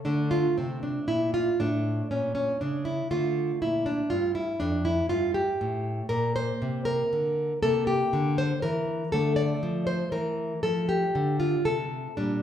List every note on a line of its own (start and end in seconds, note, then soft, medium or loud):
0.05 0.47 D3 medium
0.05 1.55 A3 soft
0.05 0.30 D4 medium
0.31 0.56 F4 medium
0.58 0.99 C3 soft
0.58 0.82 C4 medium
0.83 1.07 D4 medium
1.08 1.49 A#2 soft
1.08 1.33 E4 medium
1.34 1.58 F4 medium
1.60 2.01 A2 medium
1.60 3.07 A3 soft
1.60 2.09 D4 medium
2.11 2.52 A#2 medium
2.11 2.34 C#4 soft
2.35 2.59 C#4 medium
2.61 3.01 C#3 medium
2.61 2.85 D4 medium
2.85 3.09 E4 medium
3.11 3.51 D3 medium
3.11 6.07 A3 soft
3.11 3.59 F4 medium
3.62 4.01 A#2 medium
3.62 3.85 E4 medium
3.86 4.10 D4 medium
4.10 4.51 G2 medium
4.10 4.34 F4 medium
4.35 4.59 E4 medium
4.60 5.00 F2 medium
4.60 4.84 D4 medium
4.85 5.09 E4 medium
5.09 5.50 G2 medium
5.09 5.34 F4 medium
5.34 6.07 G4 medium
5.61 6.01 A2 medium
6.09 6.51 A#2 medium
6.09 7.58 A#3 soft
6.09 6.34 A#4 medium
6.36 6.85 C5 medium
6.62 7.02 C3 medium
6.85 7.59 A#4 medium
7.13 7.53 D3 medium
7.62 8.03 C3 medium
7.62 9.08 A#3 soft
7.62 7.86 A4 medium
7.87 8.35 G4 medium
8.13 8.52 D3 medium
8.38 8.61 C5 medium
8.62 9.03 E3 medium
8.62 9.10 A#4 medium
9.12 9.53 D3 medium
9.12 12.14 A3 soft
9.12 9.36 A4 medium
9.36 9.85 D5 medium
9.63 10.03 F3 medium
9.87 10.11 C5 medium
10.12 10.53 E3 medium
10.12 10.61 A#4 medium
10.63 11.04 F3 medium
10.63 10.88 A4 medium
10.89 11.38 G4 medium
11.15 11.55 D3 medium
11.40 11.64 F4 medium
11.65 12.07 C3 medium
11.65 12.15 A4 medium
12.17 12.42 A#2 medium
12.17 12.42 G3 soft
12.17 12.42 D4 medium